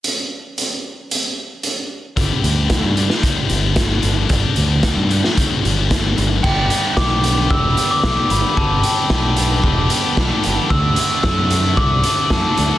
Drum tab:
CC |----------------|----------------|----------------|x---------------|
HH |x---x---x---x---|x-x-x-x-x-x-x-x-|x-x-x-x-x-x-x-x-|--x---x---x---x-|
SD |----------------|----o--o----o---|----o--o----o---|----o-------o---|
BD |----------------|o---o---o---o---|o---o---o---o---|o---o---o---o---|

CC |----------------|----------------|
HH |--x---x---x---x-|--x---x---x---x-|
SD |----o-------o---|----o-------o---|
BD |o---o---o---o---|o---o---o---o---|